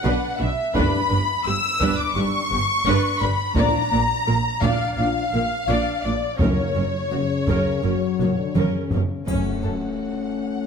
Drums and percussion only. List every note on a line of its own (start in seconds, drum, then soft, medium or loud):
0.75 taiko medium
1.81 taiko medium
3.56 taiko medium
4.62 taiko medium
6.39 taiko medium
7.47 taiko medium
8.19 taiko low-mid medium
8.55 taiko mid medium
8.91 taiko low medium
9.27 taiko soft
9.27 triangle soft